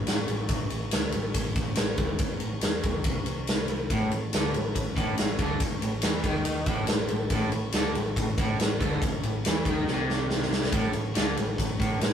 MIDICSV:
0, 0, Header, 1, 6, 480
1, 0, Start_track
1, 0, Key_signature, 0, "minor"
1, 0, Tempo, 426743
1, 552, Time_signature, 4, 2, 24, 8
1, 13645, End_track
2, 0, Start_track
2, 0, Title_t, "Overdriven electric guitar"
2, 0, Program_c, 0, 29
2, 4404, Note_on_c, 0, 45, 105
2, 4627, Note_off_c, 0, 45, 0
2, 4641, Note_on_c, 0, 45, 65
2, 4829, Note_off_c, 0, 45, 0
2, 4880, Note_on_c, 0, 50, 96
2, 5105, Note_off_c, 0, 50, 0
2, 5109, Note_on_c, 0, 45, 72
2, 5304, Note_off_c, 0, 45, 0
2, 5341, Note_on_c, 0, 45, 74
2, 5539, Note_off_c, 0, 45, 0
2, 5582, Note_on_c, 0, 45, 103
2, 5804, Note_off_c, 0, 45, 0
2, 5817, Note_on_c, 0, 45, 68
2, 6018, Note_off_c, 0, 45, 0
2, 6065, Note_on_c, 0, 50, 98
2, 6302, Note_off_c, 0, 50, 0
2, 6549, Note_on_c, 0, 45, 71
2, 6744, Note_off_c, 0, 45, 0
2, 6788, Note_on_c, 0, 52, 95
2, 7024, Note_off_c, 0, 52, 0
2, 7034, Note_on_c, 0, 51, 99
2, 7507, Note_off_c, 0, 51, 0
2, 7513, Note_on_c, 0, 45, 95
2, 7726, Note_off_c, 0, 45, 0
2, 7739, Note_on_c, 0, 45, 65
2, 7938, Note_off_c, 0, 45, 0
2, 7987, Note_on_c, 0, 45, 66
2, 8182, Note_off_c, 0, 45, 0
2, 8231, Note_on_c, 0, 45, 105
2, 8455, Note_off_c, 0, 45, 0
2, 8469, Note_on_c, 0, 45, 71
2, 8663, Note_off_c, 0, 45, 0
2, 8724, Note_on_c, 0, 50, 96
2, 8946, Note_off_c, 0, 50, 0
2, 8950, Note_on_c, 0, 45, 71
2, 9144, Note_off_c, 0, 45, 0
2, 9193, Note_on_c, 0, 45, 71
2, 9385, Note_off_c, 0, 45, 0
2, 9432, Note_on_c, 0, 45, 98
2, 9665, Note_off_c, 0, 45, 0
2, 9678, Note_on_c, 0, 45, 64
2, 9868, Note_off_c, 0, 45, 0
2, 9904, Note_on_c, 0, 50, 105
2, 10141, Note_off_c, 0, 50, 0
2, 10398, Note_on_c, 0, 45, 68
2, 10587, Note_off_c, 0, 45, 0
2, 10631, Note_on_c, 0, 52, 106
2, 10865, Note_off_c, 0, 52, 0
2, 10871, Note_on_c, 0, 51, 99
2, 11104, Note_off_c, 0, 51, 0
2, 11127, Note_on_c, 0, 48, 99
2, 12051, Note_off_c, 0, 48, 0
2, 12056, Note_on_c, 0, 45, 101
2, 12282, Note_off_c, 0, 45, 0
2, 12295, Note_on_c, 0, 45, 69
2, 12495, Note_off_c, 0, 45, 0
2, 12536, Note_on_c, 0, 50, 97
2, 12776, Note_off_c, 0, 50, 0
2, 12794, Note_on_c, 0, 45, 76
2, 12984, Note_off_c, 0, 45, 0
2, 13010, Note_on_c, 0, 45, 68
2, 13211, Note_off_c, 0, 45, 0
2, 13263, Note_on_c, 0, 45, 94
2, 13489, Note_off_c, 0, 45, 0
2, 13502, Note_on_c, 0, 45, 67
2, 13645, Note_off_c, 0, 45, 0
2, 13645, End_track
3, 0, Start_track
3, 0, Title_t, "Picked electric bass"
3, 0, Program_c, 1, 34
3, 68, Note_on_c, 1, 33, 70
3, 293, Note_off_c, 1, 33, 0
3, 309, Note_on_c, 1, 33, 83
3, 534, Note_off_c, 1, 33, 0
3, 553, Note_on_c, 1, 33, 93
3, 776, Note_off_c, 1, 33, 0
3, 803, Note_on_c, 1, 33, 77
3, 1021, Note_off_c, 1, 33, 0
3, 1044, Note_on_c, 1, 38, 89
3, 1262, Note_off_c, 1, 38, 0
3, 1276, Note_on_c, 1, 33, 81
3, 1498, Note_off_c, 1, 33, 0
3, 1503, Note_on_c, 1, 33, 75
3, 1731, Note_off_c, 1, 33, 0
3, 1753, Note_on_c, 1, 33, 92
3, 1976, Note_off_c, 1, 33, 0
3, 1997, Note_on_c, 1, 33, 79
3, 2213, Note_off_c, 1, 33, 0
3, 2220, Note_on_c, 1, 38, 95
3, 2449, Note_off_c, 1, 38, 0
3, 2731, Note_on_c, 1, 33, 77
3, 2946, Note_off_c, 1, 33, 0
3, 2957, Note_on_c, 1, 40, 88
3, 3179, Note_off_c, 1, 40, 0
3, 3188, Note_on_c, 1, 39, 92
3, 3414, Note_off_c, 1, 39, 0
3, 3426, Note_on_c, 1, 36, 88
3, 4345, Note_off_c, 1, 36, 0
3, 4381, Note_on_c, 1, 33, 88
3, 4610, Note_off_c, 1, 33, 0
3, 4622, Note_on_c, 1, 33, 76
3, 4851, Note_off_c, 1, 33, 0
3, 4867, Note_on_c, 1, 38, 93
3, 5082, Note_off_c, 1, 38, 0
3, 5088, Note_on_c, 1, 33, 80
3, 5323, Note_off_c, 1, 33, 0
3, 5341, Note_on_c, 1, 33, 77
3, 5570, Note_off_c, 1, 33, 0
3, 5584, Note_on_c, 1, 33, 84
3, 5812, Note_off_c, 1, 33, 0
3, 5831, Note_on_c, 1, 33, 71
3, 6047, Note_off_c, 1, 33, 0
3, 6054, Note_on_c, 1, 38, 100
3, 6286, Note_off_c, 1, 38, 0
3, 6555, Note_on_c, 1, 33, 83
3, 6778, Note_off_c, 1, 33, 0
3, 6787, Note_on_c, 1, 40, 87
3, 7004, Note_off_c, 1, 40, 0
3, 7011, Note_on_c, 1, 39, 95
3, 7468, Note_off_c, 1, 39, 0
3, 7495, Note_on_c, 1, 33, 90
3, 7727, Note_off_c, 1, 33, 0
3, 7987, Note_on_c, 1, 33, 88
3, 8200, Note_off_c, 1, 33, 0
3, 8207, Note_on_c, 1, 33, 87
3, 8442, Note_off_c, 1, 33, 0
3, 8472, Note_on_c, 1, 33, 79
3, 8683, Note_off_c, 1, 33, 0
3, 8689, Note_on_c, 1, 38, 98
3, 8924, Note_off_c, 1, 38, 0
3, 8935, Note_on_c, 1, 33, 86
3, 9167, Note_off_c, 1, 33, 0
3, 9173, Note_on_c, 1, 33, 83
3, 9405, Note_off_c, 1, 33, 0
3, 9421, Note_on_c, 1, 33, 92
3, 9650, Note_off_c, 1, 33, 0
3, 9679, Note_on_c, 1, 33, 82
3, 9890, Note_off_c, 1, 33, 0
3, 9897, Note_on_c, 1, 38, 94
3, 10127, Note_off_c, 1, 38, 0
3, 10376, Note_on_c, 1, 33, 85
3, 10607, Note_off_c, 1, 33, 0
3, 10622, Note_on_c, 1, 40, 91
3, 10850, Note_off_c, 1, 40, 0
3, 10855, Note_on_c, 1, 39, 90
3, 11082, Note_off_c, 1, 39, 0
3, 11089, Note_on_c, 1, 36, 97
3, 12015, Note_off_c, 1, 36, 0
3, 12057, Note_on_c, 1, 33, 93
3, 12287, Note_off_c, 1, 33, 0
3, 12297, Note_on_c, 1, 33, 79
3, 12527, Note_off_c, 1, 33, 0
3, 12541, Note_on_c, 1, 38, 88
3, 12768, Note_off_c, 1, 38, 0
3, 12775, Note_on_c, 1, 33, 77
3, 13005, Note_off_c, 1, 33, 0
3, 13030, Note_on_c, 1, 33, 78
3, 13253, Note_off_c, 1, 33, 0
3, 13261, Note_on_c, 1, 33, 90
3, 13485, Note_off_c, 1, 33, 0
3, 13492, Note_on_c, 1, 33, 77
3, 13645, Note_off_c, 1, 33, 0
3, 13645, End_track
4, 0, Start_track
4, 0, Title_t, "Muted overdriven electric guitar strokes"
4, 6318, Note_on_c, 9, 29, 55
4, 6431, Note_off_c, 9, 29, 0
4, 10159, Note_on_c, 9, 29, 57
4, 10272, Note_off_c, 9, 29, 0
4, 13645, End_track
5, 0, Start_track
5, 0, Title_t, "Muted picked electric bass strokes"
5, 2465, Note_on_c, 9, 29, 40
5, 2577, Note_off_c, 9, 29, 0
5, 6291, Note_on_c, 9, 29, 42
5, 6404, Note_off_c, 9, 29, 0
5, 10142, Note_on_c, 9, 29, 38
5, 10254, Note_off_c, 9, 29, 0
5, 13645, End_track
6, 0, Start_track
6, 0, Title_t, "Drums"
6, 76, Note_on_c, 9, 51, 86
6, 94, Note_on_c, 9, 38, 106
6, 188, Note_off_c, 9, 51, 0
6, 206, Note_off_c, 9, 38, 0
6, 313, Note_on_c, 9, 51, 70
6, 426, Note_off_c, 9, 51, 0
6, 547, Note_on_c, 9, 51, 88
6, 551, Note_on_c, 9, 36, 106
6, 659, Note_off_c, 9, 51, 0
6, 664, Note_off_c, 9, 36, 0
6, 791, Note_on_c, 9, 51, 65
6, 903, Note_off_c, 9, 51, 0
6, 1027, Note_on_c, 9, 51, 99
6, 1045, Note_on_c, 9, 38, 110
6, 1139, Note_off_c, 9, 51, 0
6, 1157, Note_off_c, 9, 38, 0
6, 1263, Note_on_c, 9, 51, 70
6, 1376, Note_off_c, 9, 51, 0
6, 1512, Note_on_c, 9, 36, 85
6, 1512, Note_on_c, 9, 51, 101
6, 1624, Note_off_c, 9, 51, 0
6, 1625, Note_off_c, 9, 36, 0
6, 1750, Note_on_c, 9, 51, 72
6, 1753, Note_on_c, 9, 36, 100
6, 1862, Note_off_c, 9, 51, 0
6, 1865, Note_off_c, 9, 36, 0
6, 1974, Note_on_c, 9, 51, 96
6, 1992, Note_on_c, 9, 38, 112
6, 2086, Note_off_c, 9, 51, 0
6, 2104, Note_off_c, 9, 38, 0
6, 2221, Note_on_c, 9, 51, 72
6, 2228, Note_on_c, 9, 36, 101
6, 2334, Note_off_c, 9, 51, 0
6, 2341, Note_off_c, 9, 36, 0
6, 2459, Note_on_c, 9, 51, 93
6, 2470, Note_on_c, 9, 36, 101
6, 2571, Note_off_c, 9, 51, 0
6, 2582, Note_off_c, 9, 36, 0
6, 2698, Note_on_c, 9, 51, 73
6, 2811, Note_off_c, 9, 51, 0
6, 2939, Note_on_c, 9, 51, 96
6, 2957, Note_on_c, 9, 38, 113
6, 3051, Note_off_c, 9, 51, 0
6, 3069, Note_off_c, 9, 38, 0
6, 3187, Note_on_c, 9, 51, 68
6, 3191, Note_on_c, 9, 36, 103
6, 3300, Note_off_c, 9, 51, 0
6, 3304, Note_off_c, 9, 36, 0
6, 3419, Note_on_c, 9, 51, 94
6, 3429, Note_on_c, 9, 36, 101
6, 3531, Note_off_c, 9, 51, 0
6, 3541, Note_off_c, 9, 36, 0
6, 3665, Note_on_c, 9, 51, 67
6, 3777, Note_off_c, 9, 51, 0
6, 3906, Note_on_c, 9, 51, 86
6, 3924, Note_on_c, 9, 38, 106
6, 4018, Note_off_c, 9, 51, 0
6, 4036, Note_off_c, 9, 38, 0
6, 4138, Note_on_c, 9, 51, 60
6, 4251, Note_off_c, 9, 51, 0
6, 4387, Note_on_c, 9, 36, 91
6, 4388, Note_on_c, 9, 51, 79
6, 4499, Note_off_c, 9, 36, 0
6, 4501, Note_off_c, 9, 51, 0
6, 4628, Note_on_c, 9, 51, 61
6, 4740, Note_off_c, 9, 51, 0
6, 4867, Note_on_c, 9, 51, 97
6, 4885, Note_on_c, 9, 38, 115
6, 4980, Note_off_c, 9, 51, 0
6, 4998, Note_off_c, 9, 38, 0
6, 5109, Note_on_c, 9, 51, 65
6, 5221, Note_off_c, 9, 51, 0
6, 5348, Note_on_c, 9, 36, 85
6, 5349, Note_on_c, 9, 51, 90
6, 5460, Note_off_c, 9, 36, 0
6, 5462, Note_off_c, 9, 51, 0
6, 5584, Note_on_c, 9, 36, 94
6, 5595, Note_on_c, 9, 51, 67
6, 5697, Note_off_c, 9, 36, 0
6, 5707, Note_off_c, 9, 51, 0
6, 5821, Note_on_c, 9, 51, 92
6, 5839, Note_on_c, 9, 38, 113
6, 5933, Note_off_c, 9, 51, 0
6, 5951, Note_off_c, 9, 38, 0
6, 6060, Note_on_c, 9, 36, 102
6, 6060, Note_on_c, 9, 51, 71
6, 6172, Note_off_c, 9, 36, 0
6, 6172, Note_off_c, 9, 51, 0
6, 6300, Note_on_c, 9, 36, 97
6, 6300, Note_on_c, 9, 51, 92
6, 6412, Note_off_c, 9, 36, 0
6, 6412, Note_off_c, 9, 51, 0
6, 6546, Note_on_c, 9, 51, 69
6, 6659, Note_off_c, 9, 51, 0
6, 6767, Note_on_c, 9, 51, 103
6, 6785, Note_on_c, 9, 38, 111
6, 6879, Note_off_c, 9, 51, 0
6, 6897, Note_off_c, 9, 38, 0
6, 7015, Note_on_c, 9, 51, 73
6, 7016, Note_on_c, 9, 36, 102
6, 7128, Note_off_c, 9, 51, 0
6, 7129, Note_off_c, 9, 36, 0
6, 7254, Note_on_c, 9, 51, 90
6, 7366, Note_off_c, 9, 51, 0
6, 7492, Note_on_c, 9, 51, 68
6, 7496, Note_on_c, 9, 36, 104
6, 7605, Note_off_c, 9, 51, 0
6, 7609, Note_off_c, 9, 36, 0
6, 7726, Note_on_c, 9, 51, 88
6, 7744, Note_on_c, 9, 38, 110
6, 7839, Note_off_c, 9, 51, 0
6, 7857, Note_off_c, 9, 38, 0
6, 7969, Note_on_c, 9, 51, 65
6, 8081, Note_off_c, 9, 51, 0
6, 8210, Note_on_c, 9, 51, 87
6, 8214, Note_on_c, 9, 36, 99
6, 8322, Note_off_c, 9, 51, 0
6, 8327, Note_off_c, 9, 36, 0
6, 8456, Note_on_c, 9, 51, 60
6, 8568, Note_off_c, 9, 51, 0
6, 8688, Note_on_c, 9, 51, 92
6, 8706, Note_on_c, 9, 38, 118
6, 8801, Note_off_c, 9, 51, 0
6, 8819, Note_off_c, 9, 38, 0
6, 8945, Note_on_c, 9, 51, 60
6, 9057, Note_off_c, 9, 51, 0
6, 9183, Note_on_c, 9, 36, 85
6, 9188, Note_on_c, 9, 51, 81
6, 9295, Note_off_c, 9, 36, 0
6, 9301, Note_off_c, 9, 51, 0
6, 9423, Note_on_c, 9, 36, 103
6, 9425, Note_on_c, 9, 51, 71
6, 9536, Note_off_c, 9, 36, 0
6, 9537, Note_off_c, 9, 51, 0
6, 9668, Note_on_c, 9, 51, 85
6, 9686, Note_on_c, 9, 38, 107
6, 9781, Note_off_c, 9, 51, 0
6, 9799, Note_off_c, 9, 38, 0
6, 9904, Note_on_c, 9, 36, 104
6, 9916, Note_on_c, 9, 51, 73
6, 10017, Note_off_c, 9, 36, 0
6, 10029, Note_off_c, 9, 51, 0
6, 10142, Note_on_c, 9, 36, 105
6, 10149, Note_on_c, 9, 51, 86
6, 10255, Note_off_c, 9, 36, 0
6, 10262, Note_off_c, 9, 51, 0
6, 10386, Note_on_c, 9, 51, 68
6, 10498, Note_off_c, 9, 51, 0
6, 10626, Note_on_c, 9, 51, 105
6, 10644, Note_on_c, 9, 38, 108
6, 10739, Note_off_c, 9, 51, 0
6, 10757, Note_off_c, 9, 38, 0
6, 10858, Note_on_c, 9, 36, 98
6, 10865, Note_on_c, 9, 51, 70
6, 10971, Note_off_c, 9, 36, 0
6, 10977, Note_off_c, 9, 51, 0
6, 11109, Note_on_c, 9, 38, 59
6, 11222, Note_off_c, 9, 38, 0
6, 11360, Note_on_c, 9, 38, 73
6, 11473, Note_off_c, 9, 38, 0
6, 11590, Note_on_c, 9, 38, 81
6, 11703, Note_off_c, 9, 38, 0
6, 11729, Note_on_c, 9, 38, 71
6, 11841, Note_off_c, 9, 38, 0
6, 11841, Note_on_c, 9, 38, 92
6, 11954, Note_off_c, 9, 38, 0
6, 11960, Note_on_c, 9, 38, 88
6, 12062, Note_on_c, 9, 36, 100
6, 12062, Note_on_c, 9, 51, 83
6, 12073, Note_off_c, 9, 38, 0
6, 12175, Note_off_c, 9, 36, 0
6, 12175, Note_off_c, 9, 51, 0
6, 12296, Note_on_c, 9, 51, 68
6, 12408, Note_off_c, 9, 51, 0
6, 12543, Note_on_c, 9, 51, 93
6, 12561, Note_on_c, 9, 38, 120
6, 12656, Note_off_c, 9, 51, 0
6, 12674, Note_off_c, 9, 38, 0
6, 12793, Note_on_c, 9, 51, 69
6, 12905, Note_off_c, 9, 51, 0
6, 13029, Note_on_c, 9, 36, 88
6, 13040, Note_on_c, 9, 51, 92
6, 13141, Note_off_c, 9, 36, 0
6, 13153, Note_off_c, 9, 51, 0
6, 13270, Note_on_c, 9, 36, 93
6, 13289, Note_on_c, 9, 51, 70
6, 13382, Note_off_c, 9, 36, 0
6, 13402, Note_off_c, 9, 51, 0
6, 13512, Note_on_c, 9, 51, 90
6, 13530, Note_on_c, 9, 38, 113
6, 13625, Note_off_c, 9, 51, 0
6, 13643, Note_off_c, 9, 38, 0
6, 13645, End_track
0, 0, End_of_file